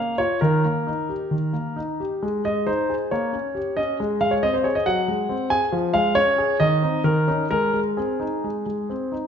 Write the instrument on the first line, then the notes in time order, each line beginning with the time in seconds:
grand piano
Already playing: A#3 F5
0.18 F4 C#5
0.41 D#3 A#4
0.65 A#3
0.87 D#4
1.09 G4
1.31 D#3
1.53 A#3
1.76 D#4
2.00 G4
2.22 G#3
2.45 G#3 D#5
2.67 D#4 C5
2.90 G#4
3.11 A#3 C#5
3.33 C#4
3.55 G4
3.77 C#4 D#5
4.00 G#3
4.21 G#3 F5
4.31 C#5
4.43 C4 D#5
4.54 C5
4.64 G#4 C#5
4.75 D#5
4.86 F#3 F#5
5.08 G#3
5.29 C4
5.50 G#4 G#5
5.72 F3
5.94 G#3 F5
6.15 C#4 C#5
6.38 G#4
6.60 D#3 D#5
6.82 C4 D#4
7.04 D#3 A#4
7.28 C#4 D#4
7.51 G#3 A#4
7.74 G#3
7.97 C4 G#4
8.20 D#4
8.44 G#3
8.66 G#3
8.90 C4
9.12 D#4